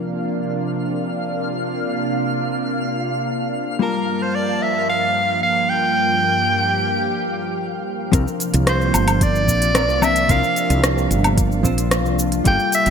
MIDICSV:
0, 0, Header, 1, 7, 480
1, 0, Start_track
1, 0, Tempo, 540541
1, 1462, Time_signature, 4, 2, 24, 8
1, 11456, End_track
2, 0, Start_track
2, 0, Title_t, "Synth texture"
2, 0, Program_c, 0, 99
2, 0, Note_on_c, 0, 77, 80
2, 0, Note_on_c, 0, 89, 82
2, 7232, Note_off_c, 0, 77, 0
2, 7232, Note_off_c, 0, 89, 0
2, 11456, End_track
3, 0, Start_track
3, 0, Title_t, "Soprano saxophone"
3, 0, Program_c, 1, 64
3, 3393, Note_on_c, 1, 70, 71
3, 3748, Note_on_c, 1, 72, 73
3, 3762, Note_off_c, 1, 70, 0
3, 3869, Note_on_c, 1, 74, 81
3, 3882, Note_off_c, 1, 72, 0
3, 4109, Note_on_c, 1, 76, 81
3, 4123, Note_off_c, 1, 74, 0
3, 4343, Note_off_c, 1, 76, 0
3, 4348, Note_on_c, 1, 77, 94
3, 4792, Note_off_c, 1, 77, 0
3, 4823, Note_on_c, 1, 77, 98
3, 5059, Note_on_c, 1, 79, 98
3, 5072, Note_off_c, 1, 77, 0
3, 6740, Note_off_c, 1, 79, 0
3, 7716, Note_on_c, 1, 72, 86
3, 8198, Note_on_c, 1, 74, 102
3, 8212, Note_off_c, 1, 72, 0
3, 8913, Note_on_c, 1, 76, 100
3, 8926, Note_off_c, 1, 74, 0
3, 9157, Note_on_c, 1, 77, 93
3, 9171, Note_off_c, 1, 76, 0
3, 9629, Note_off_c, 1, 77, 0
3, 11078, Note_on_c, 1, 79, 104
3, 11293, Note_off_c, 1, 79, 0
3, 11320, Note_on_c, 1, 76, 102
3, 11456, Note_off_c, 1, 76, 0
3, 11456, End_track
4, 0, Start_track
4, 0, Title_t, "Hollow-body jazz guitar"
4, 0, Program_c, 2, 26
4, 0, Note_on_c, 2, 53, 63
4, 0, Note_on_c, 2, 60, 56
4, 0, Note_on_c, 2, 62, 56
4, 0, Note_on_c, 2, 70, 67
4, 3347, Note_off_c, 2, 53, 0
4, 3352, Note_off_c, 2, 60, 0
4, 3357, Note_off_c, 2, 62, 0
4, 3361, Note_off_c, 2, 70, 0
4, 3367, Note_on_c, 2, 55, 68
4, 3376, Note_on_c, 2, 58, 62
4, 3385, Note_on_c, 2, 65, 63
4, 3394, Note_on_c, 2, 81, 73
4, 7186, Note_off_c, 2, 55, 0
4, 7190, Note_off_c, 2, 58, 0
4, 7195, Note_off_c, 2, 65, 0
4, 7199, Note_off_c, 2, 81, 0
4, 7207, Note_on_c, 2, 53, 87
4, 7215, Note_on_c, 2, 60, 80
4, 7224, Note_on_c, 2, 62, 77
4, 7234, Note_on_c, 2, 70, 93
4, 8626, Note_off_c, 2, 53, 0
4, 8630, Note_off_c, 2, 60, 0
4, 8634, Note_off_c, 2, 62, 0
4, 8639, Note_off_c, 2, 70, 0
4, 8654, Note_on_c, 2, 53, 88
4, 8658, Note_on_c, 2, 60, 80
4, 8662, Note_on_c, 2, 62, 80
4, 8668, Note_on_c, 2, 70, 103
4, 8717, Note_off_c, 2, 53, 0
4, 8718, Note_off_c, 2, 60, 0
4, 8721, Note_off_c, 2, 62, 0
4, 8723, Note_off_c, 2, 70, 0
4, 8895, Note_on_c, 2, 53, 87
4, 8900, Note_on_c, 2, 60, 87
4, 8905, Note_on_c, 2, 62, 85
4, 8910, Note_on_c, 2, 74, 94
4, 9110, Note_off_c, 2, 53, 0
4, 9112, Note_off_c, 2, 60, 0
4, 9115, Note_off_c, 2, 62, 0
4, 9117, Note_off_c, 2, 74, 0
4, 9129, Note_on_c, 2, 53, 101
4, 9137, Note_on_c, 2, 60, 89
4, 9147, Note_on_c, 2, 62, 85
4, 9156, Note_on_c, 2, 70, 110
4, 10307, Note_off_c, 2, 53, 0
4, 10311, Note_off_c, 2, 60, 0
4, 10316, Note_off_c, 2, 62, 0
4, 10320, Note_off_c, 2, 70, 0
4, 10328, Note_on_c, 2, 53, 97
4, 10338, Note_on_c, 2, 60, 90
4, 10346, Note_on_c, 2, 62, 84
4, 10355, Note_on_c, 2, 72, 107
4, 11026, Note_off_c, 2, 53, 0
4, 11031, Note_off_c, 2, 60, 0
4, 11035, Note_off_c, 2, 62, 0
4, 11040, Note_off_c, 2, 72, 0
4, 11048, Note_on_c, 2, 55, 89
4, 11057, Note_on_c, 2, 58, 81
4, 11066, Note_on_c, 2, 65, 84
4, 11076, Note_on_c, 2, 69, 99
4, 11456, Note_off_c, 2, 55, 0
4, 11456, Note_off_c, 2, 58, 0
4, 11456, Note_off_c, 2, 65, 0
4, 11456, Note_off_c, 2, 69, 0
4, 11456, End_track
5, 0, Start_track
5, 0, Title_t, "Analog synth pad"
5, 0, Program_c, 3, 89
5, 0, Note_on_c, 3, 48, 82
5, 0, Note_on_c, 3, 58, 72
5, 0, Note_on_c, 3, 62, 72
5, 0, Note_on_c, 3, 65, 88
5, 3345, Note_off_c, 3, 58, 0
5, 3345, Note_off_c, 3, 62, 0
5, 3345, Note_off_c, 3, 65, 0
5, 3346, Note_off_c, 3, 48, 0
5, 3379, Note_on_c, 3, 58, 75
5, 3380, Note_on_c, 3, 43, 80
5, 3380, Note_on_c, 3, 53, 75
5, 3383, Note_on_c, 3, 81, 88
5, 5283, Note_off_c, 3, 81, 0
5, 5305, Note_on_c, 3, 67, 93
5, 7185, Note_off_c, 3, 43, 0
5, 7185, Note_off_c, 3, 53, 0
5, 7185, Note_off_c, 3, 58, 0
5, 7204, Note_off_c, 3, 67, 0
5, 7222, Note_on_c, 3, 48, 82
5, 7224, Note_on_c, 3, 62, 81
5, 7224, Note_on_c, 3, 65, 93
5, 7225, Note_on_c, 3, 58, 76
5, 11026, Note_off_c, 3, 48, 0
5, 11027, Note_off_c, 3, 62, 0
5, 11028, Note_off_c, 3, 58, 0
5, 11057, Note_on_c, 3, 81, 80
5, 11058, Note_on_c, 3, 55, 86
5, 11060, Note_on_c, 3, 58, 92
5, 11456, Note_off_c, 3, 55, 0
5, 11456, Note_off_c, 3, 58, 0
5, 11456, Note_off_c, 3, 65, 0
5, 11456, Note_off_c, 3, 81, 0
5, 11456, End_track
6, 0, Start_track
6, 0, Title_t, "Fretless electric bass"
6, 0, Program_c, 4, 35
6, 7220, Note_on_c, 4, 36, 103
6, 7320, Note_off_c, 4, 36, 0
6, 7584, Note_on_c, 4, 36, 94
6, 7907, Note_off_c, 4, 36, 0
6, 7942, Note_on_c, 4, 31, 95
6, 8422, Note_off_c, 4, 31, 0
6, 8422, Note_on_c, 4, 34, 77
6, 8784, Note_off_c, 4, 34, 0
6, 8784, Note_on_c, 4, 36, 82
6, 9107, Note_off_c, 4, 36, 0
6, 9141, Note_on_c, 4, 36, 98
6, 9241, Note_off_c, 4, 36, 0
6, 9502, Note_on_c, 4, 36, 96
6, 9826, Note_off_c, 4, 36, 0
6, 9862, Note_on_c, 4, 31, 91
6, 10342, Note_off_c, 4, 31, 0
6, 10342, Note_on_c, 4, 34, 79
6, 10701, Note_off_c, 4, 34, 0
6, 10701, Note_on_c, 4, 36, 89
6, 11026, Note_off_c, 4, 36, 0
6, 11062, Note_on_c, 4, 31, 106
6, 11161, Note_off_c, 4, 31, 0
6, 11424, Note_on_c, 4, 31, 101
6, 11456, Note_off_c, 4, 31, 0
6, 11456, End_track
7, 0, Start_track
7, 0, Title_t, "Drums"
7, 7220, Note_on_c, 9, 36, 110
7, 7222, Note_on_c, 9, 42, 53
7, 7227, Note_on_c, 9, 69, 40
7, 7309, Note_off_c, 9, 36, 0
7, 7311, Note_off_c, 9, 42, 0
7, 7316, Note_off_c, 9, 69, 0
7, 7350, Note_on_c, 9, 69, 23
7, 7438, Note_off_c, 9, 69, 0
7, 7460, Note_on_c, 9, 42, 30
7, 7466, Note_on_c, 9, 69, 74
7, 7549, Note_off_c, 9, 42, 0
7, 7554, Note_off_c, 9, 69, 0
7, 7580, Note_on_c, 9, 42, 49
7, 7586, Note_on_c, 9, 69, 35
7, 7669, Note_off_c, 9, 42, 0
7, 7675, Note_off_c, 9, 69, 0
7, 7698, Note_on_c, 9, 37, 104
7, 7698, Note_on_c, 9, 42, 53
7, 7704, Note_on_c, 9, 69, 42
7, 7787, Note_off_c, 9, 37, 0
7, 7787, Note_off_c, 9, 42, 0
7, 7793, Note_off_c, 9, 69, 0
7, 7826, Note_on_c, 9, 69, 20
7, 7915, Note_off_c, 9, 69, 0
7, 7938, Note_on_c, 9, 42, 33
7, 7938, Note_on_c, 9, 77, 62
7, 7944, Note_on_c, 9, 69, 79
7, 8027, Note_off_c, 9, 42, 0
7, 8027, Note_off_c, 9, 77, 0
7, 8033, Note_off_c, 9, 69, 0
7, 8060, Note_on_c, 9, 42, 48
7, 8060, Note_on_c, 9, 77, 81
7, 8065, Note_on_c, 9, 69, 34
7, 8148, Note_off_c, 9, 42, 0
7, 8148, Note_off_c, 9, 77, 0
7, 8154, Note_off_c, 9, 69, 0
7, 8180, Note_on_c, 9, 36, 113
7, 8180, Note_on_c, 9, 42, 57
7, 8185, Note_on_c, 9, 69, 47
7, 8269, Note_off_c, 9, 36, 0
7, 8269, Note_off_c, 9, 42, 0
7, 8274, Note_off_c, 9, 69, 0
7, 8307, Note_on_c, 9, 69, 22
7, 8395, Note_off_c, 9, 69, 0
7, 8420, Note_on_c, 9, 36, 58
7, 8424, Note_on_c, 9, 69, 76
7, 8509, Note_off_c, 9, 36, 0
7, 8512, Note_off_c, 9, 69, 0
7, 8541, Note_on_c, 9, 42, 45
7, 8547, Note_on_c, 9, 69, 32
7, 8630, Note_off_c, 9, 42, 0
7, 8635, Note_off_c, 9, 69, 0
7, 8657, Note_on_c, 9, 37, 107
7, 8657, Note_on_c, 9, 42, 61
7, 8662, Note_on_c, 9, 69, 47
7, 8746, Note_off_c, 9, 37, 0
7, 8746, Note_off_c, 9, 42, 0
7, 8751, Note_off_c, 9, 69, 0
7, 8785, Note_on_c, 9, 69, 22
7, 8874, Note_off_c, 9, 69, 0
7, 8898, Note_on_c, 9, 77, 63
7, 8904, Note_on_c, 9, 69, 83
7, 8987, Note_off_c, 9, 77, 0
7, 8993, Note_off_c, 9, 69, 0
7, 9021, Note_on_c, 9, 42, 49
7, 9026, Note_on_c, 9, 69, 33
7, 9110, Note_off_c, 9, 42, 0
7, 9115, Note_off_c, 9, 69, 0
7, 9140, Note_on_c, 9, 42, 52
7, 9141, Note_on_c, 9, 36, 113
7, 9146, Note_on_c, 9, 69, 43
7, 9229, Note_off_c, 9, 36, 0
7, 9229, Note_off_c, 9, 42, 0
7, 9234, Note_off_c, 9, 69, 0
7, 9268, Note_on_c, 9, 69, 24
7, 9357, Note_off_c, 9, 69, 0
7, 9381, Note_on_c, 9, 42, 32
7, 9386, Note_on_c, 9, 69, 80
7, 9469, Note_off_c, 9, 42, 0
7, 9475, Note_off_c, 9, 69, 0
7, 9503, Note_on_c, 9, 42, 47
7, 9509, Note_on_c, 9, 69, 36
7, 9592, Note_off_c, 9, 42, 0
7, 9598, Note_off_c, 9, 69, 0
7, 9622, Note_on_c, 9, 37, 102
7, 9622, Note_on_c, 9, 42, 54
7, 9628, Note_on_c, 9, 69, 46
7, 9711, Note_off_c, 9, 37, 0
7, 9711, Note_off_c, 9, 42, 0
7, 9716, Note_off_c, 9, 69, 0
7, 9751, Note_on_c, 9, 69, 23
7, 9840, Note_off_c, 9, 69, 0
7, 9864, Note_on_c, 9, 42, 31
7, 9869, Note_on_c, 9, 69, 79
7, 9953, Note_off_c, 9, 42, 0
7, 9958, Note_off_c, 9, 69, 0
7, 9985, Note_on_c, 9, 42, 43
7, 9985, Note_on_c, 9, 77, 77
7, 9990, Note_on_c, 9, 69, 33
7, 10073, Note_off_c, 9, 42, 0
7, 10073, Note_off_c, 9, 77, 0
7, 10079, Note_off_c, 9, 69, 0
7, 10102, Note_on_c, 9, 36, 120
7, 10102, Note_on_c, 9, 42, 55
7, 10107, Note_on_c, 9, 69, 46
7, 10190, Note_off_c, 9, 36, 0
7, 10191, Note_off_c, 9, 42, 0
7, 10196, Note_off_c, 9, 69, 0
7, 10229, Note_on_c, 9, 69, 23
7, 10318, Note_off_c, 9, 69, 0
7, 10341, Note_on_c, 9, 36, 57
7, 10344, Note_on_c, 9, 69, 81
7, 10430, Note_off_c, 9, 36, 0
7, 10433, Note_off_c, 9, 69, 0
7, 10461, Note_on_c, 9, 42, 45
7, 10466, Note_on_c, 9, 69, 36
7, 10549, Note_off_c, 9, 42, 0
7, 10555, Note_off_c, 9, 69, 0
7, 10579, Note_on_c, 9, 37, 102
7, 10579, Note_on_c, 9, 42, 55
7, 10585, Note_on_c, 9, 69, 47
7, 10668, Note_off_c, 9, 37, 0
7, 10668, Note_off_c, 9, 42, 0
7, 10674, Note_off_c, 9, 69, 0
7, 10707, Note_on_c, 9, 69, 24
7, 10795, Note_off_c, 9, 69, 0
7, 10825, Note_on_c, 9, 69, 88
7, 10914, Note_off_c, 9, 69, 0
7, 10940, Note_on_c, 9, 42, 48
7, 10946, Note_on_c, 9, 69, 34
7, 11029, Note_off_c, 9, 42, 0
7, 11035, Note_off_c, 9, 69, 0
7, 11059, Note_on_c, 9, 42, 52
7, 11062, Note_on_c, 9, 36, 123
7, 11065, Note_on_c, 9, 69, 45
7, 11148, Note_off_c, 9, 42, 0
7, 11151, Note_off_c, 9, 36, 0
7, 11153, Note_off_c, 9, 69, 0
7, 11185, Note_on_c, 9, 69, 23
7, 11273, Note_off_c, 9, 69, 0
7, 11298, Note_on_c, 9, 42, 31
7, 11304, Note_on_c, 9, 69, 81
7, 11387, Note_off_c, 9, 42, 0
7, 11392, Note_off_c, 9, 69, 0
7, 11420, Note_on_c, 9, 42, 44
7, 11426, Note_on_c, 9, 69, 37
7, 11456, Note_off_c, 9, 42, 0
7, 11456, Note_off_c, 9, 69, 0
7, 11456, End_track
0, 0, End_of_file